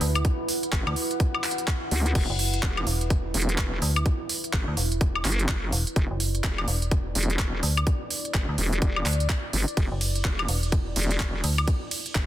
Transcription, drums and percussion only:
0.01 open hi-hat medium
0.15 closed hi-hat medium
0.15 high woodblock medium
0.25 kick loud
0.25 closed hi-hat medium
0.49 open hi-hat loud
0.63 closed hi-hat medium
0.72 kick loud
0.72 clap loud
0.72 closed hi-hat medium
0.87 high woodblock medium
0.96 open hi-hat loud
1.11 closed hi-hat medium
1.20 kick loud
1.20 closed hi-hat medium
1.34 high woodblock medium
1.44 clap medium
1.44 open hi-hat medium
1.51 closed hi-hat medium
1.58 closed hi-hat medium
1.68 kick loud
1.68 clap loud
1.68 closed hi-hat medium
1.91 open hi-hat loud
2.06 closed hi-hat medium
2.15 kick loud
2.15 closed hi-hat medium
2.15 crash medium
2.39 open hi-hat loud
2.54 closed hi-hat medium
2.63 kick loud
2.63 clap loud
2.63 closed hi-hat medium
2.77 high woodblock medium
2.87 open hi-hat loud
3.01 closed hi-hat medium
3.10 kick loud
3.10 closed hi-hat medium
3.34 open hi-hat loud
3.42 closed hi-hat medium
3.49 closed hi-hat medium
3.58 kick loud
3.58 clap loud
3.58 closed hi-hat medium
3.82 open hi-hat loud
3.96 closed hi-hat medium
3.96 high woodblock medium
4.06 kick loud
4.06 closed hi-hat medium
4.29 open hi-hat loud
4.44 closed hi-hat medium
4.53 kick loud
4.53 clap loud
4.53 closed hi-hat medium
4.77 open hi-hat loud
4.92 closed hi-hat medium
5.01 kick loud
5.01 closed hi-hat medium
5.15 high woodblock medium
5.25 clap medium
5.25 open hi-hat loud
5.32 closed hi-hat medium
5.39 closed hi-hat medium
5.49 kick loud
5.49 clap loud
5.49 closed hi-hat medium
5.72 open hi-hat loud
5.87 closed hi-hat medium
5.96 kick loud
5.96 closed hi-hat medium
6.20 open hi-hat loud
6.35 closed hi-hat medium
6.44 kick loud
6.44 clap loud
6.44 closed hi-hat medium
6.58 high woodblock medium
6.68 open hi-hat loud
6.82 closed hi-hat medium
6.91 kick loud
6.91 closed hi-hat medium
7.15 open hi-hat loud
7.23 closed hi-hat medium
7.30 closed hi-hat medium
7.39 kick loud
7.39 clap loud
7.39 closed hi-hat medium
7.63 open hi-hat loud
7.77 closed hi-hat soft
7.77 high woodblock medium
7.87 kick loud
7.87 closed hi-hat medium
8.11 open hi-hat loud
8.25 closed hi-hat medium
8.34 kick loud
8.34 clap loud
8.34 closed hi-hat medium
8.58 open hi-hat loud
8.73 closed hi-hat medium
8.82 kick loud
8.82 closed hi-hat medium
8.96 high woodblock medium
9.06 clap medium
9.06 open hi-hat loud
9.13 closed hi-hat medium
9.20 closed hi-hat medium
9.29 kick loud
9.29 clap loud
9.29 closed hi-hat medium
9.53 open hi-hat loud
9.68 closed hi-hat medium
9.77 kick loud
9.77 closed hi-hat medium
9.77 ride medium
10.01 open hi-hat loud
10.01 ride medium
10.15 closed hi-hat medium
10.25 kick loud
10.25 clap loud
10.25 closed hi-hat medium
10.25 ride medium
10.39 high woodblock medium
10.48 open hi-hat loud
10.48 ride medium
10.63 closed hi-hat medium
10.72 kick loud
10.72 closed hi-hat medium
10.72 ride medium
10.96 open hi-hat loud
10.96 ride medium
11.03 closed hi-hat medium
11.11 closed hi-hat medium
11.20 kick loud
11.20 clap loud
11.20 closed hi-hat medium
11.20 ride medium
11.44 open hi-hat loud
11.44 ride medium
11.58 closed hi-hat medium
11.58 high woodblock medium
11.68 kick loud
11.68 closed hi-hat medium
11.68 ride medium
11.91 open hi-hat loud
11.91 ride medium
12.06 closed hi-hat medium
12.15 kick loud
12.15 clap loud
12.15 closed hi-hat medium
12.15 ride medium

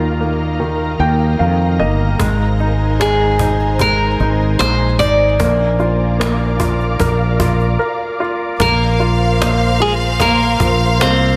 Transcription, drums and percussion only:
2.20 cajon bass loud
2.59 cajon slap soft
3.01 cajon slap loud
3.39 cajon bass medium
3.60 cajon slap soft
3.79 cajon bass medium
4.20 cajon slap soft
4.61 cajon slap medium
5.00 cajon bass medium
5.40 cajon bass loud
5.79 cajon slap soft
6.21 cajon slap loud
6.60 cajon bass medium
6.80 cajon slap soft
7.00 cajon bass medium
7.40 cajon bass medium
7.60 cajon slap soft
8.60 cajon bass loud
9.00 cajon slap soft
9.42 cajon slap loud
9.80 cajon slap soft
10.01 cajon slap soft
10.20 cajon bass medium
10.60 cajon bass loud
10.80 cajon slap soft
11.01 cajon slap loud

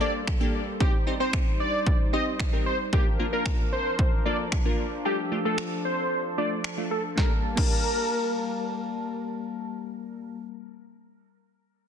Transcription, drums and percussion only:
0.27 finger snap loud
0.27 kick loud
0.81 kick loud
1.33 finger snap loud
1.33 kick loud
1.87 kick loud
2.40 finger snap loud
2.40 kick loud
2.93 kick loud
3.46 finger snap loud
3.46 kick loud
3.99 kick loud
4.52 finger snap loud
4.52 kick loud
5.58 finger snap loud
6.64 finger snap loud
7.18 kick loud
7.18 snare medium
7.57 kick loud
7.57 crash medium

